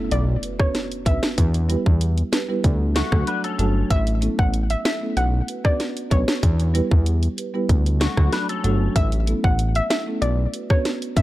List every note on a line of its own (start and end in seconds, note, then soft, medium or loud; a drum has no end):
0.00 impact medium
0.11 0.37 B1 loud
0.11 0.23 D5 medium
0.11 closed hi-hat medium
0.42 0.49 F#4 medium
0.42 0.50 B4 medium
0.42 closed hi-hat medium
0.59 0.71 B3 medium
0.59 0.72 C#4 medium
0.59 0.72 D4 medium
0.59 0.72 F#4 medium
0.59 0.72 B4 medium
0.59 0.70 C#5 medium
0.59 kick loud
0.59 cross-stick medium
0.75 snare medium
0.75 closed hi-hat medium
0.92 closed hi-hat medium
1.05 1.20 B1 medium
1.05 1.19 B3 medium
1.05 1.19 C#4 medium
1.05 1.20 D4 medium
1.05 1.20 F#4 medium
1.05 1.20 B4 medium
1.05 1.18 E5 medium
1.05 kick loud
1.05 closed hi-hat medium
1.23 snare loud
1.38 1.76 E2 loud
1.38 kick loud
1.38 closed hi-hat medium
1.54 closed hi-hat medium
1.69 1.83 G3 medium
1.69 1.83 B3 medium
1.69 1.83 E4 medium
1.69 1.83 G4 medium
1.69 1.83 B4 loud
1.69 closed hi-hat medium
1.86 2.23 E2 loud
1.86 kick loud
2.01 closed hi-hat medium
2.18 closed hi-hat medium
2.32 2.39 G4 medium
2.32 2.40 B4 medium
2.32 snare loud
2.32 closed hi-hat medium
2.48 2.61 G3 medium
2.48 2.61 B3 medium
2.48 2.61 E4 medium
2.48 2.61 G4 medium
2.48 2.62 B4 medium
2.64 3.03 D2 loud
2.64 2.94 D5 medium
2.64 kick loud
2.64 closed hi-hat medium
2.95 3.26 A3 medium
2.95 3.02 F#4 medium
2.95 3.26 F#4 medium
2.95 3.03 A4 loud
2.95 3.25 E5 medium
2.95 snare loud
2.95 closed hi-hat medium
3.12 3.24 D2 loud
3.12 3.24 F#3 medium
3.12 3.24 A3 medium
3.12 3.24 D4 medium
3.12 3.25 F#4 medium
3.12 3.25 A4 medium
3.12 kick loud
3.12 cross-stick medium
3.27 3.44 D4 medium
3.27 3.43 B4 medium
3.27 3.57 F#5 medium
3.27 closed hi-hat medium
3.44 3.88 C#4 medium
3.44 3.88 A4 medium
3.44 closed hi-hat medium
3.58 3.84 G1 loud
3.58 3.72 F#3 medium
3.58 3.72 A3 medium
3.58 3.72 D4 medium
3.58 3.73 F#4 medium
3.58 3.73 A4 loud
3.58 3.88 A5 medium
3.58 closed hi-hat medium
3.90 4.29 A1 loud
3.90 4.02 E5 loud
3.90 kick loud
3.90 closed hi-hat medium
4.07 closed hi-hat medium
4.21 4.35 A3 medium
4.21 4.35 B3 medium
4.21 4.35 C#4 medium
4.21 4.36 E4 medium
4.21 4.36 A4 medium
4.21 closed hi-hat medium
4.39 4.76 A1 medium
4.39 4.49 F#5 medium
4.39 kick loud
4.54 closed hi-hat medium
4.70 4.80 E5 medium
4.70 closed hi-hat medium
4.84 4.91 E4 medium
4.84 4.92 A4 medium
4.84 4.97 E5 medium
4.84 snare loud
4.84 closed hi-hat medium
5.01 5.13 A3 medium
5.01 5.14 B3 medium
5.01 5.14 C#4 medium
5.01 5.14 E4 medium
5.01 5.14 A4 medium
5.17 5.42 B1 loud
5.17 5.28 F#5 medium
5.17 closed hi-hat medium
5.47 5.55 F#4 medium
5.47 5.55 B4 medium
5.47 closed hi-hat medium
5.64 5.77 B3 medium
5.64 5.77 C#4 medium
5.64 5.77 D4 medium
5.64 5.77 F#4 medium
5.64 5.77 B4 medium
5.64 5.75 D5 medium
5.64 kick loud
5.64 cross-stick medium
5.80 snare medium
5.80 closed hi-hat medium
5.97 closed hi-hat medium
6.10 6.25 B1 medium
6.10 6.24 B3 medium
6.10 6.25 C#4 medium
6.10 6.25 D4 medium
6.10 6.25 F#4 medium
6.10 6.25 B4 medium
6.10 6.23 C#5 medium
6.10 kick loud
6.10 closed hi-hat medium
6.28 snare loud
6.43 6.82 E2 loud
6.43 kick loud
6.43 closed hi-hat medium
6.60 closed hi-hat medium
6.74 6.88 G3 medium
6.74 6.88 B3 medium
6.74 6.88 E4 medium
6.74 6.88 G4 medium
6.74 6.88 B4 loud
6.74 closed hi-hat medium
6.91 7.28 E2 loud
6.91 kick loud
7.06 closed hi-hat medium
7.23 closed hi-hat medium
7.37 7.44 G4 medium
7.37 7.45 B4 loud
7.37 closed hi-hat medium
7.54 7.66 G3 medium
7.54 7.66 B3 medium
7.54 7.67 E4 medium
7.54 7.67 G4 medium
7.54 7.67 B4 medium
7.69 8.08 D2 loud
7.69 kick loud
7.69 closed hi-hat medium
7.86 closed hi-hat soft
8.00 8.31 A3 medium
8.00 8.07 F#4 medium
8.00 8.31 F#4 medium
8.00 8.08 A4 loud
8.00 snare loud
8.00 closed hi-hat medium
8.17 8.29 D2 medium
8.17 8.29 F#3 medium
8.17 8.30 A3 medium
8.17 8.30 D4 medium
8.17 8.30 F#4 medium
8.17 8.30 A4 loud
8.17 kick loud
8.17 cross-stick medium
8.33 8.49 D4 medium
8.33 8.49 B4 medium
8.33 snare medium
8.33 closed hi-hat medium
8.49 8.94 C#4 medium
8.49 8.93 A4 medium
8.49 closed hi-hat medium
8.64 8.89 G1 medium
8.64 8.77 F#3 loud
8.64 8.78 A3 medium
8.64 8.78 D4 medium
8.64 8.78 F#4 medium
8.64 8.78 A4 loud
8.64 closed hi-hat medium
8.96 9.34 A1 loud
8.96 9.07 E5 loud
8.96 kick loud
8.96 closed hi-hat medium
9.12 closed hi-hat medium
9.27 9.40 A3 medium
9.27 9.41 B3 medium
9.27 9.41 C#4 medium
9.27 9.41 E4 medium
9.27 9.41 A4 medium
9.27 closed hi-hat medium
9.44 9.81 A1 medium
9.44 9.54 F#5 medium
9.44 kick loud
9.59 closed hi-hat medium
9.75 9.86 E5 medium
9.75 closed hi-hat medium
9.90 9.97 E4 medium
9.90 9.98 A4 medium
9.90 10.02 E5 medium
9.90 snare loud
9.90 closed hi-hat medium
10.06 10.19 A3 medium
10.06 10.19 B3 medium
10.06 10.19 C#4 medium
10.06 10.19 E4 medium
10.06 10.19 A4 medium
10.22 10.47 B1 loud
10.22 10.33 D5 medium
10.22 closed hi-hat medium
10.53 10.60 F#4 medium
10.53 10.61 B4 medium
10.53 closed hi-hat medium
10.70 10.82 B3 medium
10.70 10.82 C#4 medium
10.70 10.82 D4 medium
10.70 10.83 F#4 medium
10.70 10.83 B4 medium
10.70 10.80 C#5 medium
10.70 kick loud
10.70 cross-stick medium
10.85 snare medium
10.85 closed hi-hat medium
11.02 closed hi-hat medium
11.16 11.22 B1 medium
11.16 11.22 B3 medium
11.16 11.22 C#4 medium
11.16 11.22 D4 medium
11.16 11.22 F#4 medium
11.16 11.22 B4 medium
11.16 11.22 E5 medium
11.16 kick loud
11.16 closed hi-hat medium